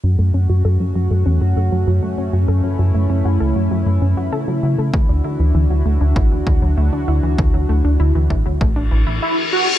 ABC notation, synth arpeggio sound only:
X:1
M:4/4
L:1/16
Q:1/4=98
K:F#m
V:1 name="Synth arpeggio sound"
F, A, C F A F, F, A, C F A F, F, A, C F | A F, F, A, C F A F, F, A, C F A F, F, A, | A, D E E, E, F, A, D E E, E, F, A, D E E, | E, F, A, D E E, E, F, A, D E, E z4 |]